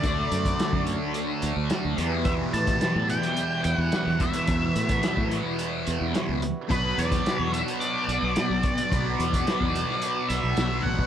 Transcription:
Already playing: F#3 A3 D4 F#4 A4 D5
0.03 D2 D3 A3 D4, kick, closed hi-hat
0.32 F#2, closed hi-hat
0.45 kick, closed hi-hat
0.59 snare, closed hi-hat
0.73 F#2, kick
0.86 closed hi-hat
1.14 closed hi-hat
1.42 D2, closed hi-hat
1.57 D2
1.70 snare, closed hi-hat
1.85 D2
1.97 E2 B2 E3 G3 B3 E4 G4 B4, closed hi-hat
2.25 E5, kick, closed hi-hat
2.53 A2 A5, closed hi-hat
2.67 kick, closed hi-hat
2.81 snare, closed hi-hat
2.96 A2
3.09 G5, closed hi-hat
3.23 snare, closed hi-hat
3.37 closed hi-hat
3.64 E2 G5, closed hi-hat
3.76 E2 F#5
3.92 snare, closed hi-hat
4.07 E2
4.19 E2 B2 E3 F#4 E5, kick, closed hi-hat
4.33 closed hi-hat
4.47 E2, kick, closed hi-hat
4.76 A2, closed hi-hat
4.89 kick, closed hi-hat
5.03 snare, closed hi-hat
5.17 A2, kick
5.31 closed hi-hat
5.59 closed hi-hat
5.87 E2, closed hi-hat
6.01 E2
6.14 snare, closed hi-hat
6.29 C#2
6.42 closed hi-hat
6.68 B1 B2 F#3 B3 D4 F#4 B4, kick, closed hi-hat
6.98 E2 D5, closed hi-hat
7.12 kick, closed hi-hat
7.26 snare, closed hi-hat
7.39 E2 C#5
7.53 E5, closed hi-hat
7.68 closed hi-hat
7.80 D5, closed hi-hat
8.08 B1, closed hi-hat
8.22 B1
8.36 snare, closed hi-hat
8.50 B1
8.63 kick, closed hi-hat
8.78 closed hi-hat
8.91 B1 B2 F#3 B3, kick, closed hi-hat
9.19 E2, closed hi-hat
9.33 kick, closed hi-hat
9.47 snare, closed hi-hat
9.61 E2, kick
9.75 closed hi-hat
9.90 snare
10.02 closed hi-hat
10.29 B1 E5, closed hi-hat
10.44 B1
10.57 B1, snare, closed hi-hat
10.83 A1 F#5, kick
10.99 kick

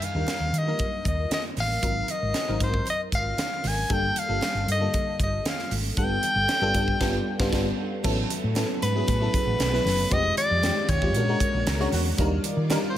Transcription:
Already playing: G3 D4 D#4 F4 A#4
0.02 F5, closed hi-hat, muted conga
0.15 D#2 G3 D4 D#4 F4 A#4
0.27 snare, closed hi-hat, high conga
0.40 D#2
0.53 D#3, closed hi-hat
0.58 D#5
0.66 F#3 A#3 D#4 F4 A#4
0.73 G3
0.79 kick, closed hi-hat, muted conga
1.05 D#2 D#5, kick, closed hi-hat
1.31 D#5, snare, closed hi-hat, high conga
1.57 A1 F5, snare, open hi-hat, high conga
1.82 G#1 F#3 C4 D#4 F4 A#4, kick, closed hi-hat, muted conga
2.08 D#5, closed hi-hat, muted conga
2.22 G#1
2.34 snare, closed hi-hat, high conga
2.48 G#1 F#3 C4 D#4 F4 A#4
2.60 G#2 F#3 C4 D#4 F4 A#4 C5, kick, closed hi-hat
2.74 kick
2.86 closed hi-hat, muted conga
2.90 D#5
3.12 G#1 F5, kick, closed hi-hat
3.38 snare, closed hi-hat, high conga
3.64 G#1 G#5, snare, open hi-hat, high conga
3.89 G1 G3 A#3 D4 F4 A4 G5, kick, closed hi-hat, muted conga
4.16 F5, closed hi-hat, muted conga
4.28 G1 G3 A#3 D4 F4 A4
4.41 snare, closed hi-hat, high conga
4.55 G1
4.68 G2 D#5, closed hi-hat
4.80 D3 G3 A#3 F4 A4
4.94 kick, closed hi-hat, muted conga
5.20 G1 D#5, kick, closed hi-hat, muted conga
5.45 F5, snare, closed hi-hat, high conga
5.59 snare
5.71 G#1, open hi-hat, high conga
5.97 G1 G3 A3 D4 F4 A4 G5, kick, closed hi-hat, muted conga
6.03 B3
6.23 closed hi-hat, muted conga
6.35 G1
6.48 snare, closed hi-hat, high conga
6.61 G1 G3 B3 D4 F4 A4
6.74 G2 G3 B3 D4 F4 A4, kick, closed hi-hat
6.88 kick
7.00 G1 G3 B3 D4 F4, kick, snare, crash
7.39 G1 G3 B3 D4 F4, kick, snare
7.52 G1 G3 B3 D4 F4, kick, snare, crash
8.03 A1 C#3 F#3 A3 B3 C#4 E4 F#4 A4, kick, crash, muted conga
8.30 closed hi-hat, muted conga
8.44 A2
8.55 F#3 B3 C#4 E4 A4, snare, closed hi-hat, high conga
8.82 G#2 B4, closed hi-hat
8.95 F#3 B3 C#4 E4 G#4
9.08 A2, kick, closed hi-hat, muted conga
9.21 F#3 B3 C#4 E4 A4
9.34 kick, closed hi-hat
9.47 A1
9.59 B1, snare, closed hi-hat, high conga
9.73 F#3 B3 C#4 E4 B4, snare
9.85 F#1, snare, open hi-hat, high conga
10.10 F1 D#3 G#3 C4 D#4 F4 G4 D#5, kick, closed hi-hat, muted conga
10.37 D5, closed hi-hat, muted conga
10.51 F2
10.62 G#3 C4 D#4 F4 G4, snare, closed hi-hat, high conga
10.89 D#2 C#5, kick, closed hi-hat, low conga
11.02 G#3 C4 D#4 F4 G4, kick
11.13 A#2 D3 G#3 A#3 C#4 D4 F#4, closed hi-hat, muted conga
11.17 A#4
11.28 G#3 C#4 D4 F#4 A#4
11.40 kick, closed hi-hat, muted conga
11.54 A#1
11.67 C#2 A#5, snare, closed hi-hat, high conga
11.80 G#3 C#4 D4 F#4 C#5, snare
11.92 E2 F#5, snare, open hi-hat, high conga
12.16 D#2 D#3 G3 D4 D#4 F4 A#4 D5, kick, closed hi-hat, muted conga
12.44 closed hi-hat, muted conga
12.57 D#3
12.70 G3 D4 D#4 F4 A#4, snare, closed hi-hat, high conga
12.90 C5

